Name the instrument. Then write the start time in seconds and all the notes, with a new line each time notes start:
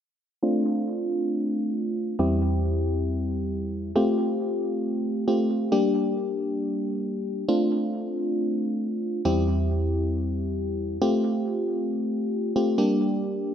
fm electric piano
0.43 A3 C4 D4 F4
2.19 E2 G3 C4 E4 G4
3.96 A3 C4 F4 G4
5.28 A3 C4 F4 G4
5.72 G3 A#3 D4 G4
7.48 A3 C4 D4 F4
9.25 E2 G3 C4 E4 G4
11.02 A3 C4 F4 G4
12.56 A3 C4 F4 G4
12.78 G3 A#3 D4 G4